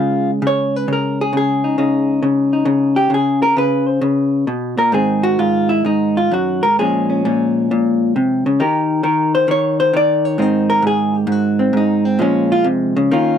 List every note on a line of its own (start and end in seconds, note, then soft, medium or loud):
0.00 0.42 C#3 medium
0.00 3.11 G#3 soft
0.00 0.30 F4 medium
0.42 0.88 C#3 medium
0.47 0.76 C#5 medium
0.76 0.90 B4 medium
0.88 1.33 C#3 medium
0.93 1.21 A#4 medium
1.21 1.35 G#4 medium
1.33 1.78 C#3 medium
1.37 2.10 G#4 medium
1.64 1.78 D#4 soft
1.78 2.22 C#3 medium
1.78 2.53 D#4 soft
2.23 2.64 C#3 medium
2.53 3.13 D#4 soft
2.65 3.09 C#3 medium
2.96 3.11 G4 medium
3.10 3.55 C#3 medium
3.14 3.42 G#4 medium
3.42 3.57 A#4 medium
3.57 4.00 C#3 medium
3.57 3.87 B4 medium
3.87 4.05 C5 loud
4.01 4.47 C#3 medium
4.01 4.78 B4 medium
4.47 4.77 B2 medium
4.77 4.93 A#2 medium
4.77 4.93 A#4 medium
4.92 5.38 G#2 medium
4.92 6.78 D#3 soft
4.92 6.77 C4 soft
4.92 5.25 G#4 medium
5.23 5.39 F#4 medium
5.39 5.83 G#2 medium
5.39 5.70 F4 medium
5.69 5.85 E4 medium
5.85 6.31 G#2 medium
5.85 6.17 D#4 medium
6.17 6.32 F4 medium
6.31 6.63 F#2 medium
6.31 6.64 F#4 medium
6.63 6.78 G#2 medium
6.63 6.78 A#4 medium
6.79 7.24 A#2 medium
6.79 8.59 F3 soft
6.79 8.60 G#3 soft
6.79 7.09 C#4 soft
6.79 8.16 G#4 medium
7.10 7.26 C#4 soft
7.25 7.70 A#2 medium
7.25 8.59 C#4 soft
7.71 8.15 A#2 medium
8.16 8.46 C3 medium
8.46 8.60 C#3 medium
8.60 9.02 D#3 medium
8.60 10.36 D#4 soft
8.60 10.37 G4 soft
8.60 9.04 A#4 soft
9.03 9.47 D#3 medium
9.03 9.34 A#4 soft
9.35 9.49 C5 medium
9.48 9.92 D#3 medium
9.48 9.79 C#5 loud
9.80 9.94 C5 medium
9.93 10.38 D#3 medium
9.93 10.25 D5 loud
10.25 10.42 C#5 loud
10.38 10.81 G#2 medium
10.38 12.19 D#3 medium
10.38 11.58 C4 soft
10.38 11.15 D#4 soft
10.38 10.69 C5 medium
10.70 10.84 A#4 medium
10.82 11.26 G#2 medium
10.87 11.15 G#4 medium
11.15 11.32 G4 medium
11.27 11.72 G#2 medium
11.32 11.75 F#4 medium
11.59 12.04 C4 soft
11.73 12.17 G#2 medium
11.73 12.05 D#4 medium
12.05 12.19 C4 medium
12.19 12.64 A#2 medium
12.19 13.10 F3 medium
12.19 13.12 G#3 medium
12.19 12.51 C#4 medium
12.52 12.66 F4 medium
12.64 12.96 C3 medium
12.96 13.12 C#3 medium
13.11 13.38 D#3 medium
13.11 13.38 A#3 medium
13.11 13.38 C#4 medium
13.11 13.38 F4 medium